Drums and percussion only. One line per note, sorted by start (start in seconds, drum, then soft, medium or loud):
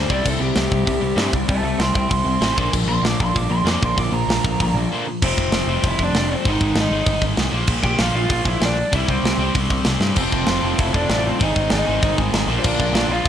0.10 kick medium
0.26 kick loud
0.26 crash loud
0.55 snare loud
0.55 open hi-hat medium
0.72 kick medium
0.87 kick loud
0.87 open hi-hat medium
1.18 snare loud
1.18 open hi-hat medium
1.33 kick medium
1.48 kick loud
1.48 open hi-hat medium
1.80 snare loud
1.80 open hi-hat medium
1.95 kick medium
2.10 kick loud
2.10 open hi-hat medium
2.42 snare loud
2.42 open hi-hat medium
2.58 kick medium
2.73 kick loud
2.73 crash loud
3.05 snare loud
3.05 open hi-hat medium
3.20 kick medium
3.36 kick loud
3.36 open hi-hat medium
3.67 snare loud
3.67 open hi-hat medium
3.83 kick medium
3.98 kick loud
3.98 open hi-hat medium
4.30 snare loud
4.30 open hi-hat medium
4.44 kick medium
4.60 kick loud
4.60 open hi-hat medium
5.22 kick loud
5.22 crash loud
5.38 kick medium
5.52 snare loud
5.52 open hi-hat medium
5.83 kick loud
5.83 open hi-hat medium
5.99 kick medium
6.15 snare loud
6.15 open hi-hat medium
6.45 kick loud
6.45 open hi-hat medium
6.61 kick medium
6.75 snare loud
6.75 open hi-hat medium
7.06 kick loud
7.06 open hi-hat medium
7.22 kick medium
7.37 snare loud
7.37 open hi-hat medium
7.67 kick loud
7.67 crash loud
7.83 kick medium
7.98 snare loud
7.98 open hi-hat medium
8.29 kick loud
8.29 open hi-hat medium
8.45 kick medium
8.61 snare loud
8.61 open hi-hat medium
8.93 kick loud
8.93 open hi-hat medium
9.08 kick medium
9.25 snare loud
9.25 open hi-hat medium
9.55 kick loud
9.55 open hi-hat medium
9.70 kick medium
9.85 snare loud
9.85 open hi-hat medium
10.01 snare medium
10.16 kick loud
10.16 crash loud
10.32 kick medium
10.47 snare loud
10.47 open hi-hat medium
10.78 kick loud
10.78 open hi-hat medium
10.94 kick medium
11.09 snare loud
11.09 open hi-hat medium
11.40 kick loud
11.40 open hi-hat medium
11.56 kick medium
11.70 snare loud
11.70 open hi-hat medium
12.02 kick loud
12.02 open hi-hat medium
12.18 kick medium
12.34 snare loud
12.34 open hi-hat medium
12.64 kick loud
12.64 crash loud
12.80 kick medium
12.95 snare loud
12.95 open hi-hat medium
13.25 open hi-hat medium